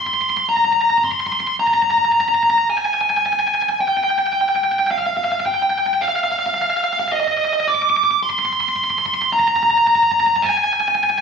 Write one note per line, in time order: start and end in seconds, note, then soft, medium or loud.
0.07 0.14 C6 medium
0.14 0.21 C6 medium
0.22 0.29 C6 medium
0.30 0.37 C6 medium
0.37 0.45 C6 medium
0.49 0.57 A#5 medium
0.57 0.64 A#5 medium
0.65 0.72 A#5 medium
0.73 0.81 A#5 medium
0.82 0.90 A#5 medium
0.90 0.97 A#5 medium
0.98 1.04 A#5 medium
1.04 1.11 C6 medium
1.12 1.19 C6 medium
1.20 1.26 C6 medium
1.27 1.32 C6 medium
1.32 1.40 C6 medium
1.40 1.47 C6 medium
1.47 1.55 C6 medium
1.60 1.67 A#5 medium
1.67 1.73 A#5 medium
1.74 1.81 A#5 medium
1.82 1.90 A#5 medium
1.91 1.98 A#5 medium
1.98 2.05 A#5 medium
2.05 2.12 A#5 medium
2.12 2.20 A#5 medium
2.21 2.28 A#5 medium
2.29 2.34 A#5 medium
2.35 2.42 A#5 medium
2.43 2.50 A#5 medium
2.50 2.58 A#5 medium
2.58 2.66 A#5 medium
2.70 2.77 G#5 medium
2.78 2.85 G#5 medium
2.85 2.93 G#5 medium
2.94 3.01 G#5 medium
3.01 3.09 G#5 medium
3.10 3.17 G#5 medium
3.17 3.25 G#5 medium
3.26 3.32 G#5 medium
3.33 3.39 G#5 medium
3.40 3.47 G#5 medium
3.48 3.54 G#5 medium
3.55 3.62 G#5 medium
3.62 3.69 G#5 medium
3.69 3.77 G#5 medium
3.81 3.88 G5 medium
3.88 3.96 G5 medium
3.97 4.03 G5 medium
4.04 4.10 G5 medium
4.10 4.18 G5 medium
4.19 4.26 G5 medium
4.27 4.32 G5 medium
4.33 4.40 G5 medium
4.41 4.48 G5 medium
4.49 4.55 G5 medium
4.56 4.63 G5 medium
4.64 4.72 G5 medium
4.72 4.79 G5 medium
4.79 4.87 G5 medium
4.87 4.98 F5 medium
4.87 4.91 G5 medium
4.99 5.06 F5 medium
5.06 5.15 F5 medium
5.17 5.24 F5 medium
5.24 5.31 F5 medium
5.32 5.40 F5 medium
5.40 5.46 F5 medium
5.46 5.54 G5 medium
5.54 5.62 G5 medium
5.62 5.70 G5 medium
5.70 5.78 G5 medium
5.79 5.86 G5 medium
5.86 5.94 G5 medium
5.94 6.02 G5 medium
6.01 6.08 F5 medium
6.08 6.16 F5 medium
6.16 6.23 F5 medium
6.24 6.31 F5 medium
6.32 6.39 F5 medium
6.39 6.46 F5 medium
6.46 6.54 F5 medium
6.54 6.61 F5 medium
6.62 6.69 F5 medium
6.70 6.76 F5 medium
6.77 6.84 F5 medium
6.84 6.92 F5 medium
6.93 6.99 F5 medium
6.99 7.07 F5 medium
7.08 7.12 F5 medium
7.12 7.20 D#5 medium
7.20 7.28 D#5 medium
7.28 7.36 D#5 medium
7.37 7.44 D#5 medium
7.45 7.53 D#5 medium
7.53 7.60 D#5 medium
7.60 7.68 D#5 medium
7.68 7.74 D6 loud
7.75 7.82 D6 medium
7.82 7.89 D6 medium
7.90 7.96 D6 medium
7.97 8.03 D6 medium
8.04 8.11 D6 medium
8.11 8.18 D6 medium
8.23 8.29 C6 medium
8.30 8.37 C6 medium
8.39 8.45 C6 medium
8.45 8.52 C6 medium
8.53 8.60 C6 medium
8.60 8.68 C6 medium
8.69 8.76 C6 medium
8.76 8.84 C6 medium
8.84 8.90 C6 medium
8.90 8.98 C6 medium
8.98 9.06 C6 medium
9.06 9.14 C6 medium
9.14 9.21 C6 medium
9.22 9.29 C6 medium
9.33 9.39 A#5 medium
9.40 9.47 A#5 medium
9.48 9.55 A#5 medium
9.56 9.63 A#5 medium
9.63 9.70 A#5 medium
9.71 9.77 A#5 medium
9.78 9.85 A#5 medium
9.87 9.95 A#5 loud
9.96 10.03 A#5 medium
10.03 10.11 A#5 medium
10.12 10.20 A#5 medium
10.20 10.27 A#5 medium
10.27 10.35 A#5 medium
10.36 10.44 A#5 medium
10.42 10.49 G#5 medium
10.50 10.57 G#5 medium
10.58 10.64 G#5 medium
10.64 10.72 G#5 medium
10.73 10.80 G#5 medium
10.80 10.88 G#5 medium
10.88 10.95 G#5 medium
10.95 11.03 G#5 medium
11.04 11.10 G#5 medium
11.10 11.18 G#5 medium